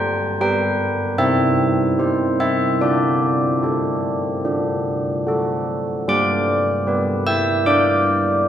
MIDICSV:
0, 0, Header, 1, 2, 480
1, 0, Start_track
1, 0, Key_signature, 1, "major"
1, 0, Tempo, 787402
1, 1212, Tempo, 821918
1, 1687, Time_signature, 4, 2, 24, 8
1, 3612, Tempo, 783290
1, 5075, End_track
2, 0, Start_track
2, 0, Title_t, "Church bells"
2, 0, Program_c, 0, 14
2, 0, Note_on_c, 0, 55, 54
2, 0, Note_on_c, 0, 79, 94
2, 228, Note_off_c, 0, 79, 0
2, 235, Note_off_c, 0, 55, 0
2, 248, Note_on_c, 0, 67, 45
2, 251, Note_on_c, 0, 79, 86
2, 254, Note_on_c, 0, 71, 47
2, 701, Note_off_c, 0, 67, 0
2, 704, Note_off_c, 0, 71, 0
2, 708, Note_off_c, 0, 79, 0
2, 722, Note_on_c, 0, 60, 61
2, 722, Note_on_c, 0, 76, 87
2, 1195, Note_off_c, 0, 60, 0
2, 1212, Note_on_c, 0, 67, 45
2, 1215, Note_on_c, 0, 72, 47
2, 1422, Note_off_c, 0, 76, 0
2, 1453, Note_on_c, 0, 76, 83
2, 1665, Note_off_c, 0, 67, 0
2, 1666, Note_off_c, 0, 72, 0
2, 1681, Note_off_c, 0, 76, 0
2, 1694, Note_on_c, 0, 62, 53
2, 1694, Note_on_c, 0, 74, 71
2, 2159, Note_off_c, 0, 62, 0
2, 2168, Note_on_c, 0, 67, 43
2, 2176, Note_on_c, 0, 69, 41
2, 2628, Note_off_c, 0, 67, 0
2, 2632, Note_off_c, 0, 69, 0
2, 2648, Note_on_c, 0, 62, 56
2, 3115, Note_off_c, 0, 74, 0
2, 3118, Note_off_c, 0, 62, 0
2, 3127, Note_on_c, 0, 66, 43
2, 3136, Note_on_c, 0, 69, 44
2, 3583, Note_off_c, 0, 66, 0
2, 3588, Note_off_c, 0, 69, 0
2, 3601, Note_on_c, 0, 55, 60
2, 3607, Note_on_c, 0, 74, 58
2, 3607, Note_on_c, 0, 86, 82
2, 4075, Note_off_c, 0, 55, 0
2, 4085, Note_on_c, 0, 67, 46
2, 4090, Note_on_c, 0, 71, 49
2, 4308, Note_off_c, 0, 74, 0
2, 4308, Note_off_c, 0, 86, 0
2, 4328, Note_on_c, 0, 88, 90
2, 4334, Note_on_c, 0, 76, 61
2, 4556, Note_off_c, 0, 76, 0
2, 4560, Note_off_c, 0, 88, 0
2, 4571, Note_on_c, 0, 86, 83
2, 4575, Note_on_c, 0, 74, 71
2, 5075, Note_off_c, 0, 67, 0
2, 5075, Note_off_c, 0, 71, 0
2, 5075, Note_off_c, 0, 74, 0
2, 5075, Note_off_c, 0, 86, 0
2, 5075, End_track
0, 0, End_of_file